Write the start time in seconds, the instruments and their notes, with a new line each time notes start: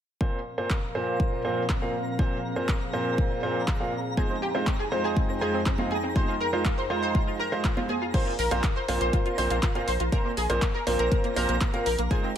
0.21 analog synth pad A#2 F3 C4 A#4 F5, grand piano A#2 A#3 C4 F4 C5, synth texture A#5, kick
0.58 grand piano A#2 A#3 C4 F4 C5
0.70 kick, clap
0.95 grand piano A#2 A#3 C4 F4 C5
1.20 kick
1.45 grand piano A#2 A#3 C4 F4 C5
1.69 kick, clap
1.82 grand piano A#2 A#3 C4 F4 F5
2.19 grand piano A#2 A#3 C4 F4 C5, analog synth pad G#4, kick
2.56 grand piano A#2 A#3 C4 F4 C5
2.69 kick, clap
2.93 grand piano A#2 A#3 C4 F4 C5
3.18 kick
3.43 grand piano A#2 A#3 C4 F4 C5
3.68 kick, clap
3.80 grand piano A#2 A#3 C4 F4 F5
4.17 analog synth pad F2 D#4 G#4 G5, grand piano G#3 D#4 F4 C5, synth pluck G#4, kick, high conga
4.30 synth pluck C4
4.42 synth pluck G4
4.55 grand piano G#3 D#4 F4 C5, synth pluck C4
4.67 synth pluck C4, kick, clap
4.79 synth pluck G#4
4.92 grand piano G#3 D#4 F4 C5, synth pluck C4
5.04 synth pluck G#4
5.17 synth pluck C4, kick
5.29 synth pluck C4
5.41 grand piano G#3 D#4 F4 C5, synth pluck G#4
5.54 synth pluck C4
5.66 synth pluck C4, kick, clap
5.78 grand piano G#3 D#4 F4 F5, synth pluck C4, high conga
5.91 synth pluck G#4, high conga
6.03 synth pluck C4
6.16 grand piano G#3 D#4 F4 C5, synth pluck C5, kick, high conga
6.28 synth pluck F4
6.40 synth pluck A#4
6.53 grand piano G#3 D#4 F4 C5, synth pluck F4
6.65 synth pluck F4, kick, clap
6.78 synth pluck C5
6.90 grand piano G#3 D#4 F4 C5, synth pluck F4
7.02 synth pluck C5
7.15 synth pluck F4, kick
7.27 synth pluck F4
7.40 synth pluck A#4
7.52 grand piano G#3 D#4 F4 C5, synth pluck F4
7.64 synth pluck F4, kick, clap
7.77 grand piano G#3 D#4 F4 C5, synth pluck F4, high conga
7.89 synth pluck G#4, high conga
8.02 synth pluck F4
8.14 grand piano A#2 A#3 C4 F4 C5, synth pluck C5, synth texture A#5, kick, closed hi-hat, crash
8.26 synth pluck F4
8.39 sub bass A#1, synth pluck A#4, open hi-hat
8.51 sub bass A#1, grand piano A#2 A#3 C4 F4 C5, synth pluck F4, closed hi-hat
8.64 synth pluck F4, kick, clap, closed hi-hat
8.76 synth pluck C5
8.88 sub bass A#1, grand piano A#2 A#3 C4 F4 C5, synth pluck F4, open hi-hat
9.01 sub bass A#1, synth pluck C5, closed hi-hat
9.13 synth pluck F4, kick, closed hi-hat
9.26 synth pluck F4, closed hi-hat
9.38 sub bass A#1, grand piano A#2 A#3 C4 F4 C5, synth pluck C5, open hi-hat
9.50 sub bass A#1, synth pluck F4, closed hi-hat
9.63 synth pluck F4, kick, clap, closed hi-hat
9.75 grand piano A#2 A#3 C4 F4 F5, synth pluck F4, closed hi-hat
9.88 sub bass A#1, synth pluck C5, open hi-hat
10.00 sub bass A#1, synth pluck F4, closed hi-hat
10.12 grand piano A#2 A#3 C4 F4 C5, synth pluck A#4, kick, closed hi-hat
10.25 synth pluck A#3
10.37 sub bass A#1, synth pluck G#4, open hi-hat
10.50 sub bass A#1, grand piano A#2 A#3 C4 F4 C5, synth pluck A#3, closed hi-hat
10.62 synth pluck A#3, kick, clap, closed hi-hat
10.74 synth pluck A#4
10.87 sub bass A#1, grand piano A#2 A#3 C4 F4 C5, synth pluck A#3, open hi-hat
10.99 sub bass A#1, synth pluck A#4, closed hi-hat
11.12 synth pluck A#3, kick, closed hi-hat
11.24 synth pluck A#3, closed hi-hat
11.36 sub bass A#1, grand piano A#2 A#3 C4 F4 C5, synth pluck A#4, open hi-hat
11.49 sub bass A#1, synth pluck A#3, closed hi-hat
11.61 synth pluck A#3, kick, clap, closed hi-hat
11.74 grand piano A#2 A#3 C4 F4 F5, synth pluck A#3, closed hi-hat
11.86 sub bass A#1, synth pluck A#4, open hi-hat
11.98 sub bass A#1, synth pluck A#3, closed hi-hat
12.11 grand piano G#3 D#4 F4 C5, synth pluck G#4, kick, closed hi-hat
12.23 synth pluck C4